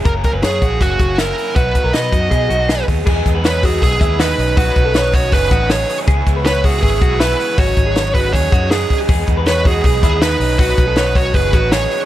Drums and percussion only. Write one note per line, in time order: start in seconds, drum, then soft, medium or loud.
0.05 kick loud
0.05 closed hi-hat medium
0.24 kick medium
0.24 closed hi-hat medium
0.43 snare loud
0.43 closed hi-hat medium
0.62 kick medium
0.62 closed hi-hat medium
0.81 kick medium
0.81 snare soft
0.81 closed hi-hat medium
0.99 kick medium
0.99 closed hi-hat medium
1.18 snare loud
1.18 closed hi-hat medium
1.38 open hi-hat medium
1.56 kick loud
1.56 closed hi-hat medium
1.75 kick medium
1.75 closed hi-hat medium
1.93 snare loud
1.93 closed hi-hat medium
2.12 kick medium
2.12 closed hi-hat medium
2.31 kick medium
2.31 closed hi-hat medium
2.50 closed hi-hat medium
2.69 snare loud
2.69 closed hi-hat loud
2.88 kick medium
2.88 open hi-hat medium
3.07 kick loud
3.07 crash medium
3.26 kick medium
3.26 hi-hat pedal medium
3.26 open hi-hat medium
3.44 snare loud
3.44 hi-hat pedal medium
3.44 open hi-hat medium
3.63 kick medium
3.63 hi-hat pedal medium
3.63 open hi-hat medium
3.82 kick medium
3.82 snare soft
3.82 hi-hat pedal medium
3.82 open hi-hat medium
4.01 kick loud
4.01 hi-hat pedal medium
4.01 open hi-hat medium
4.20 snare loud
4.20 hi-hat pedal medium
4.20 open hi-hat medium
4.39 hi-hat pedal medium
4.39 open hi-hat medium
4.57 kick loud
4.57 hi-hat pedal medium
4.57 open hi-hat loud
4.76 kick medium
4.76 hi-hat pedal medium
4.76 open hi-hat medium
4.94 snare loud
4.94 hi-hat pedal medium
4.94 open hi-hat medium
5.13 kick medium
5.13 hi-hat pedal medium
5.13 open hi-hat medium
5.32 kick medium
5.32 snare soft
5.32 hi-hat pedal medium
5.32 open hi-hat medium
5.51 kick medium
5.51 hi-hat pedal medium
5.51 open hi-hat medium
5.70 snare loud
5.70 hi-hat pedal medium
5.70 open hi-hat medium
5.89 hi-hat pedal medium
5.89 open hi-hat medium
6.08 kick loud
6.08 hi-hat pedal medium
6.08 open hi-hat medium
6.27 kick medium
6.27 hi-hat pedal medium
6.27 open hi-hat medium
6.45 snare loud
6.45 hi-hat pedal medium
6.45 open hi-hat medium
6.64 kick medium
6.64 hi-hat pedal medium
6.64 open hi-hat medium
6.83 kick medium
6.83 hi-hat pedal medium
6.83 open hi-hat medium
7.02 kick loud
7.02 hi-hat pedal medium
7.02 open hi-hat medium
7.20 snare loud
7.20 hi-hat pedal medium
7.20 open hi-hat medium
7.39 hi-hat pedal medium
7.39 open hi-hat medium
7.58 kick loud
7.58 hi-hat pedal medium
7.58 open hi-hat medium
7.77 kick medium
7.77 hi-hat pedal medium
7.77 open hi-hat medium
7.96 snare loud
7.96 hi-hat pedal medium
7.96 open hi-hat medium
8.15 kick medium
8.15 hi-hat pedal medium
8.15 open hi-hat medium
8.33 kick medium
8.33 snare soft
8.33 hi-hat pedal medium
8.33 open hi-hat medium
8.52 kick loud
8.52 hi-hat pedal medium
8.52 open hi-hat medium
8.71 snare loud
8.71 hi-hat pedal medium
8.71 open hi-hat medium
8.90 kick medium
8.90 hi-hat pedal medium
8.90 open hi-hat medium
9.09 kick loud
9.09 hi-hat pedal medium
9.09 open hi-hat loud
9.27 kick medium
9.27 hi-hat pedal medium
9.27 open hi-hat medium
9.46 snare medium
9.46 hi-hat pedal medium
9.46 open hi-hat medium
9.65 kick medium
9.65 hi-hat pedal medium
9.65 open hi-hat medium
9.84 kick medium
9.84 hi-hat pedal medium
9.84 open hi-hat medium
10.03 kick loud
10.03 hi-hat pedal medium
10.03 open hi-hat medium
10.22 snare loud
10.22 hi-hat pedal medium
10.22 open hi-hat loud
10.40 hi-hat pedal medium
10.40 open hi-hat medium
10.59 kick loud
10.59 hi-hat pedal medium
10.59 open hi-hat loud
10.77 kick loud
10.77 hi-hat pedal medium
10.77 open hi-hat medium
10.96 snare loud
10.96 hi-hat pedal medium
10.96 open hi-hat medium
11.15 kick medium
11.15 hi-hat pedal medium
11.15 open hi-hat medium
11.34 kick medium
11.34 hi-hat pedal medium
11.34 open hi-hat medium
11.53 kick loud
11.53 hi-hat pedal medium
11.53 open hi-hat medium
11.72 snare loud
11.72 hi-hat pedal medium
11.72 open hi-hat medium
11.91 hi-hat pedal medium
11.91 open hi-hat medium